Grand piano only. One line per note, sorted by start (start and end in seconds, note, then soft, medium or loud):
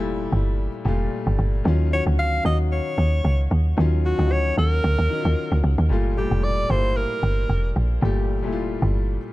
0.00 0.85 A#2 medium
0.00 0.86 G3 medium
0.00 0.87 A3 medium
0.00 1.67 A#3 medium
0.00 0.69 E4 loud
0.00 1.68 G4 loud
0.85 1.50 A#2 medium
0.85 1.51 G3 medium
0.85 1.51 A3 medium
0.85 1.52 F4 loud
1.64 1.87 D#3 medium
1.64 1.87 F#3 medium
1.64 1.88 C#4 medium
1.64 1.88 F4 loud
1.91 2.35 D#3 medium
1.91 2.35 F#3 medium
1.91 2.36 C#4 medium
1.91 2.37 F#4 medium
2.44 3.30 D#3 medium
2.44 3.31 F#3 medium
2.44 3.31 C#4 medium
2.44 3.32 F#4 medium
3.77 4.10 D#3 medium
3.77 4.10 F#3 medium
3.77 4.11 C#4 medium
3.77 4.11 F4 loud
4.18 4.93 F#3 medium
4.18 4.93 C#4 medium
4.18 4.92 D#4 medium
4.18 4.26 F4 medium
4.28 4.97 F#4 medium
5.09 5.75 D#3 medium
5.09 5.75 F#3 medium
5.09 5.76 C#4 medium
5.09 5.19 D#4 medium
5.19 5.80 F4 medium
5.89 6.11 A#2 medium
5.89 6.12 G3 medium
5.89 6.13 A3 medium
5.89 6.13 F4 loud
6.16 6.23 A2 medium
6.16 6.60 G3 medium
6.16 6.61 A3 medium
6.16 6.62 F4 medium
6.22 6.63 A#2 medium
6.68 7.55 A#2 medium
6.68 7.55 G3 medium
6.68 7.56 A#3 medium
6.68 7.56 E4 medium
8.01 8.34 A#2 medium
8.01 8.35 G3 medium
8.01 8.35 A3 medium
8.01 8.36 G4 loud
8.42 9.17 A#2 medium
8.42 9.17 G3 medium
8.42 9.18 A3 medium
8.42 8.51 E4 medium
8.52 9.22 F4 loud